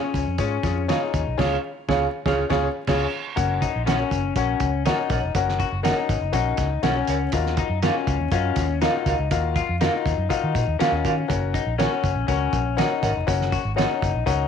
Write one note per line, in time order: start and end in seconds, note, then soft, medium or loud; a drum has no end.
0.00 0.21 C#4 medium
0.00 0.36 C#4 medium
0.00 0.21 F4 medium
0.00 0.21 G#4 medium
0.00 0.21 C#5 medium
0.14 0.24 C#2 medium
0.14 kick medium
0.14 closed hi-hat medium
0.27 0.36 F2 medium
0.38 0.57 G#2 medium
0.38 0.55 C#4 medium
0.38 0.86 C#4 medium
0.38 0.55 F4 medium
0.38 0.55 G#4 medium
0.38 0.55 C#5 medium
0.38 kick medium
0.38 closed hi-hat medium
0.63 0.91 F2 medium
0.63 0.80 C#4 medium
0.63 0.80 F4 medium
0.63 0.80 G#4 medium
0.63 0.80 C#5 medium
0.63 kick medium
0.63 snare soft
0.63 closed hi-hat medium
0.88 1.21 C#4 medium
0.88 1.36 D#4 medium
0.88 1.21 F4 medium
0.88 1.21 G#4 medium
0.88 0.99 G#4 medium
0.88 1.21 C#5 medium
0.88 0.99 C#5 medium
0.88 1.00 F5 medium
0.88 snare loud
0.88 closed hi-hat medium
1.14 1.23 D#2 medium
1.14 kick medium
1.14 closed hi-hat medium
1.27 1.36 B1 medium
1.38 1.56 C#2 loud
1.38 1.55 C#4 loud
1.38 1.55 F4 loud
1.38 1.55 G#4 loud
1.38 1.56 G#4 loud
1.38 1.55 C#5 loud
1.38 1.56 C#5 loud
1.38 1.57 F5 medium
1.38 kick loud
1.38 snare loud
1.38 crash medium
1.88 2.06 C#2 loud
1.88 2.05 C#4 medium
1.88 2.06 F4 medium
1.88 2.05 G#4 medium
1.88 2.06 G#4 medium
1.88 2.06 C#5 loud
1.88 2.06 F5 medium
1.88 kick loud
1.88 snare loud
2.26 2.43 C#2 loud
2.26 2.43 C#4 loud
2.26 2.43 F4 medium
2.26 2.43 G#4 loud
2.26 2.43 C#5 loud
2.26 2.43 F5 medium
2.26 kick loud
2.26 snare loud
2.50 2.67 C#2 loud
2.50 2.67 C#4 loud
2.50 2.67 F4 loud
2.50 2.67 G#4 loud
2.50 2.67 G#4 medium
2.50 2.67 C#5 loud
2.50 2.68 C#5 loud
2.50 2.68 F5 loud
2.50 kick loud
2.50 snare loud
2.87 3.05 C#2 loud
2.87 3.05 C#4 loud
2.87 3.05 F4 loud
2.87 3.05 G#4 loud
2.87 3.05 G#4 medium
2.87 3.05 C#5 loud
2.87 3.05 C#5 medium
2.87 3.06 F5 loud
2.87 kick loud
2.87 snare medium
2.87 crash medium
3.36 3.65 F#1 loud
3.36 3.69 C#4 medium
3.36 3.68 F#4 medium
3.36 3.68 A#4 medium
3.36 3.69 C#5 medium
3.36 3.68 F#5 loud
3.36 kick loud
3.36 closed hi-hat loud
3.62 3.81 D#4 medium
3.62 kick medium
3.62 closed hi-hat medium
3.76 4.03 A#1 medium
3.86 4.33 C#4 medium
3.86 4.19 C#4 medium
3.86 4.19 F#4 medium
3.86 4.18 A#4 medium
3.86 3.96 A#4 medium
3.86 4.19 C#5 medium
3.86 3.97 C#5 medium
3.86 4.19 F#5 medium
3.86 3.97 F#5 medium
3.86 snare loud
3.86 closed hi-hat medium
4.11 4.30 F#1 medium
4.11 kick medium
4.11 closed hi-hat medium
4.36 4.54 A#1 medium
4.36 4.68 C#4 medium
4.36 4.83 C#4 medium
4.36 4.68 F#4 medium
4.36 4.68 A#4 medium
4.36 4.68 C#5 medium
4.36 4.68 F#5 loud
4.36 kick medium
4.36 closed hi-hat medium
4.60 4.88 C#2 medium
4.60 kick loud
4.60 closed hi-hat medium
4.85 5.18 C#4 medium
4.85 5.32 D#4 medium
4.85 5.18 F#4 medium
4.85 4.95 A#4 medium
4.85 5.18 A#4 medium
4.85 4.96 C#5 medium
4.85 5.18 C#5 medium
4.85 4.96 F#5 medium
4.85 5.18 F#5 medium
4.85 snare loud
4.85 closed hi-hat medium
5.10 5.19 A#1 medium
5.10 5.18 A#4 medium
5.10 5.18 C#5 medium
5.10 5.19 F#5 medium
5.10 kick loud
5.10 closed hi-hat medium
5.23 5.32 F1 medium
5.35 5.62 F#1 loud
5.35 5.67 C#4 medium
5.35 5.67 F#4 medium
5.35 5.68 A#4 medium
5.35 5.68 C#5 medium
5.35 5.67 F#5 loud
5.35 kick loud
5.35 closed hi-hat loud
5.49 snare soft
5.60 5.80 F#4 medium
5.60 kick medium
5.60 closed hi-hat medium
5.72 5.91 F#1 medium
5.83 6.16 C#4 medium
5.83 6.31 D#4 medium
5.83 6.16 F#4 medium
5.83 6.16 A#4 medium
5.83 5.94 A#4 medium
5.83 6.16 C#5 medium
5.83 5.94 C#5 medium
5.83 6.16 F#5 medium
5.83 5.95 F#5 medium
5.83 snare loud
5.83 closed hi-hat medium
6.09 6.19 G#1 medium
6.09 kick medium
6.09 closed hi-hat medium
6.21 6.31 F#1 medium
6.32 6.52 A#1 medium
6.32 6.65 C#4 medium
6.32 6.81 D#4 medium
6.32 6.66 F#4 medium
6.32 6.65 A#4 medium
6.32 6.65 C#5 medium
6.32 6.65 F#5 medium
6.32 kick medium
6.32 closed hi-hat medium
6.57 6.77 C#2 medium
6.57 kick loud
6.57 snare soft
6.57 closed hi-hat medium
6.83 7.01 B1 medium
6.83 7.15 C#4 medium
6.83 7.31 C#4 medium
6.83 7.15 F#4 medium
6.83 7.15 A#4 medium
6.83 6.94 A#4 medium
6.83 7.15 C#5 medium
6.83 6.94 C#5 medium
6.83 7.15 F#5 loud
6.83 6.94 F#5 medium
6.83 snare loud
6.83 closed hi-hat medium
7.07 7.27 C#2 loud
7.07 7.16 A#4 medium
7.07 7.17 C#5 medium
7.07 7.17 F#5 medium
7.07 closed hi-hat medium
7.32 7.61 D#2 loud
7.32 7.65 F4 medium
7.32 7.65 F#4 medium
7.32 7.65 A#4 medium
7.32 7.65 D#5 medium
7.32 7.65 F5 loud
7.32 kick loud
7.32 closed hi-hat loud
7.46 snare soft
7.57 7.78 D#4 medium
7.57 kick medium
7.57 closed hi-hat medium
7.69 7.88 F#2 medium
7.82 8.29 C#4 medium
7.82 8.15 F4 medium
7.82 7.92 F#4 medium
7.82 8.15 F#4 medium
7.82 7.93 A#4 medium
7.82 8.15 A#4 medium
7.82 8.15 D#5 medium
7.82 8.15 F5 medium
7.82 7.93 F5 medium
7.82 snare loud
7.82 closed hi-hat medium
8.07 8.17 C#2 medium
8.07 kick medium
8.07 closed hi-hat medium
8.20 8.29 D#2 medium
8.32 8.50 F#2 loud
8.32 8.79 C#4 medium
8.32 8.64 F4 medium
8.32 8.64 F#4 medium
8.32 8.64 A#4 medium
8.32 8.64 D#5 medium
8.32 8.64 F5 loud
8.32 kick loud
8.32 closed hi-hat medium
8.56 8.84 D#2 medium
8.56 kick loud
8.56 snare soft
8.56 closed hi-hat medium
8.81 9.28 D#4 medium
8.81 9.14 F4 medium
8.81 8.91 F#4 medium
8.81 9.14 F#4 medium
8.81 9.14 A#4 medium
8.81 8.92 A#4 medium
8.81 9.14 D#5 medium
8.81 9.14 F5 loud
8.81 8.92 F5 loud
8.81 snare loud
8.81 closed hi-hat medium
9.06 9.15 C#2 medium
9.06 9.14 F#4 medium
9.06 9.14 A#4 medium
9.06 9.15 F5 medium
9.06 kick medium
9.06 closed hi-hat medium
9.19 9.28 C#2 loud
9.31 9.59 D#2 loud
9.31 9.63 F4 medium
9.31 9.63 F#4 medium
9.31 9.63 A#4 medium
9.31 9.63 D#5 medium
9.31 9.63 F5 loud
9.31 kick loud
9.31 closed hi-hat loud
9.56 9.75 F4 medium
9.56 kick medium
9.56 closed hi-hat medium
9.69 9.87 F2 medium
9.81 10.27 D#4 medium
9.81 10.13 F4 medium
9.81 10.13 F#4 medium
9.81 9.91 F#4 medium
9.81 10.13 A#4 medium
9.81 9.91 A#4 medium
9.81 10.13 D#5 medium
9.81 10.13 F5 loud
9.81 9.91 F5 medium
9.81 snare loud
9.81 closed hi-hat medium
10.06 10.15 D#2 medium
10.06 kick medium
10.06 closed hi-hat medium
10.18 10.27 F#2 medium
10.29 10.77 D#4 medium
10.29 10.62 F4 medium
10.29 10.62 F#4 medium
10.29 10.62 A#4 medium
10.29 10.62 D#5 medium
10.29 10.62 F5 medium
10.29 kick medium
10.29 closed hi-hat medium
10.44 10.52 D#3 medium
10.55 10.64 A#2 medium
10.55 kick medium
10.55 closed hi-hat medium
10.67 10.77 D#2 medium
10.79 11.26 C#4 medium
10.79 11.12 F4 medium
10.79 11.12 F#4 medium
10.79 10.90 F#4 medium
10.79 11.11 A#4 medium
10.79 10.90 A#4 medium
10.79 11.12 D#5 medium
10.79 11.12 F5 medium
10.79 10.90 F5 medium
10.79 muted fingered electric bass stroke soft
10.79 snare loud
10.79 closed hi-hat medium
10.92 11.01 D#2 medium
11.05 11.23 D#3 medium
11.05 11.12 F#4 medium
11.05 11.13 A#4 medium
11.05 11.13 F5 medium
11.05 kick medium
11.05 closed hi-hat medium
11.28 11.57 F#1 loud
11.28 11.61 C#4 medium
11.28 11.61 F#4 medium
11.28 11.61 A#4 medium
11.28 11.61 C#5 medium
11.28 11.61 F#5 medium
11.28 kick loud
11.28 closed hi-hat loud
11.54 11.74 D#4 medium
11.54 kick medium
11.54 closed hi-hat medium
11.67 11.85 A#1 medium
11.78 12.10 C#4 medium
11.78 12.25 C#4 medium
11.78 12.11 F#4 medium
11.78 11.88 A#4 medium
11.78 12.11 A#4 medium
11.78 12.11 C#5 medium
11.78 11.89 C#5 medium
11.78 12.11 F#5 medium
11.78 11.89 F#5 medium
11.78 snare loud
11.78 closed hi-hat medium
12.04 12.13 F#1 medium
12.04 kick medium
12.04 closed hi-hat medium
12.16 12.25 A#1 medium
12.28 12.47 C#2 loud
12.28 12.75 C#4 medium
12.28 12.60 C#4 medium
12.28 12.60 F#4 medium
12.28 12.61 A#4 medium
12.28 12.60 C#5 medium
12.28 12.60 F#5 medium
12.28 kick medium
12.28 closed hi-hat medium
12.53 12.80 A#1 medium
12.53 kick loud
12.53 closed hi-hat medium
12.77 13.09 C#4 medium
12.77 13.25 D#4 medium
12.77 13.09 F#4 medium
12.77 13.09 A#4 medium
12.77 12.88 A#4 medium
12.77 13.09 C#5 medium
12.77 12.88 C#5 medium
12.77 13.09 F#5 medium
12.77 12.88 F#5 medium
12.77 snare loud
12.77 closed hi-hat medium
13.03 13.12 G#1 medium
13.03 13.10 A#4 medium
13.03 13.11 C#5 medium
13.03 13.11 F#5 medium
13.03 kick medium
13.03 closed hi-hat medium
13.17 13.25 F1 medium
13.27 13.55 F#1 loud
13.27 13.59 C#4 medium
13.27 13.59 F#4 medium
13.27 13.59 A#4 medium
13.27 13.59 C#5 medium
13.27 13.59 F#5 loud
13.27 kick loud
13.27 closed hi-hat loud
13.41 snare soft
13.52 13.72 F#4 medium
13.52 kick medium
13.52 closed hi-hat medium
13.65 13.83 G#1 medium
13.76 14.08 C#4 medium
13.76 14.24 D#4 medium
13.76 14.08 F#4 medium
13.76 14.08 A#4 medium
13.76 13.86 A#4 medium
13.76 14.08 C#5 medium
13.76 13.87 C#5 medium
13.76 14.09 F#5 medium
13.76 13.87 F#5 medium
13.76 snare loud
13.76 closed hi-hat loud
14.02 14.11 F#1 medium
14.02 kick medium
14.02 closed hi-hat medium
14.15 14.24 A#1 loud
14.26 14.45 C#2 medium
14.26 14.48 C#4 medium
14.26 14.48 D#4 medium
14.26 14.48 F#4 medium
14.26 14.48 A#4 medium
14.26 14.48 C#5 medium
14.26 14.48 F#5 medium
14.26 kick medium
14.26 closed hi-hat loud